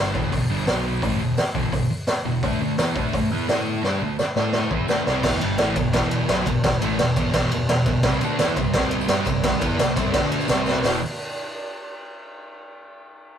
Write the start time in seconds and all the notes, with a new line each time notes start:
Already playing: G1 G2 D3 G3
0.13 E1 E2 B2 E3, kick
0.32 E1 E2 B2, kick, open hi-hat
0.50 G1 G2 D3 G3
0.66 B1 B2 F#3 B3, snare, open hi-hat, tambourine
1.02 A1 A2 E3 A3, kick, open hi-hat
1.20 E1 E2 B2
1.37 muted distorted electric guitar stroke, muted picked electric bass stroke, snare, open hi-hat, tambourine
1.55 E1 E2 B2 E3, kick
1.72 E1 E2 B2, kick, open hi-hat
1.91 muted distorted electric guitar stroke, muted picked electric bass stroke
2.07 snare, open hi-hat, tambourine
2.25 E1 E2 B2
2.43 D2 D3 A3 D4, kick, open hi-hat
2.60 D2 D3 A3
2.78 E2 E3 B3 E4, snare, open hi-hat, tambourine
2.96 D2 D3 A3 D4, kick
3.13 D2 D3 A3, kick, open hi-hat
3.31 E2 E3 B3 E4
3.48 A2 A3 E4 A4, snare, open hi-hat, tambourine
3.83 G2 G3 D4 G4, snare
4.01 D2 D3 A3
4.18 muted distorted electric guitar stroke, muted picked electric bass stroke, snare, tambourine
4.36 A2 A3 E4 A4, snare
4.52 snare
4.71 E2 E3 B3 E4, kick
4.88 D2 D3 A3 D4, snare, tambourine
5.06 C2 C3 G3 C4, snare
5.23 E1 E2 B2 E3, kick, snare, crash
5.40 G1 G2 D3 G3, ride
5.58 A1 A2 E3 A3, snare, ride
5.76 E1 E2 B2, kick, ride
5.93 E1 E2 B2 E3, kick, snare, ride
6.11 ride
6.28 B1 B2 F#3 B3, snare, ride
6.46 E1 E2 B2, kick, ride
6.64 E1 E2 B2, kick, snare, ride
6.81 A1 A2 E3 A3, ride
6.99 E1 E2 B2, snare, ride
7.16 E1 E2 B2 E3, kick, ride
7.34 kick, snare, ride
7.51 E1 E2 B2, ride
7.69 E1 E2 B2, snare, ride
7.86 E1 E2 B2, kick, ride
8.03 C2 C3 G3 C4, kick, snare, ride
8.14 tambourine
8.21 D2 D3 A3 D4, ride, tambourine
8.39 E2 E3 B3 E4, snare, ride, tambourine
8.49 tambourine
8.56 C2 C3 G3, kick, ride, tambourine
8.73 C2 C3 G3 C4, kick, snare, ride
8.91 ride
9.01 tambourine
9.08 G2 G3 D4 G4, snare, ride, tambourine
9.25 C2 C3 G3, kick, ride, tambourine
9.43 C2 C3 G3, kick, snare, ride, tambourine
9.52 tambourine
9.60 E2 E3 B3 E4, kick, ride, tambourine
9.78 C2 C3 G3, snare, ride, tambourine
9.89 tambourine
9.96 C2 C3 G3 C4, kick, ride, tambourine
10.13 D2 D3 A3 D4, kick, snare, ride, tambourine
10.24 tambourine
10.32 ride, tambourine
10.41 tambourine
10.48 C2 C3 G3 C4, snare, ride, tambourine
10.66 snare, tambourine
10.84 E1 E2 B2 E3, snare, open hi-hat, tambourine